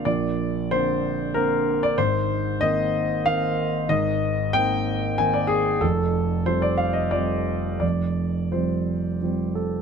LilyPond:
<<
  \new Staff \with { instrumentName = "Grand piano" } { \time 3/4 \key f \mixolydian \tempo 4 = 93 d''4 c''4 bes'8. d''16 | c''4 ees''4 f''4 | ees''4 g''4 aes''16 d''16 aes'8 | a'4 c''16 d''16 f''16 ees''16 d''4 |
d''4 c''4 r8 a'8 | }
  \new Staff \with { instrumentName = "Grand piano" } { \clef bass \time 3/4 \key f \mixolydian <bes,, bes,>4 <d bes c'>4 <d bes c'>4 | <aes,, aes,>4 <ees bes c'>4 <ees bes c'>4 | <aes,, aes,>4 <ees bes c'>4 <ees bes c'>4 | <f,, f,>4 <f g c'>4 <f g c'>4 |
<f,, f,>4 <f g c'>4 <f g c'>4 | }
>>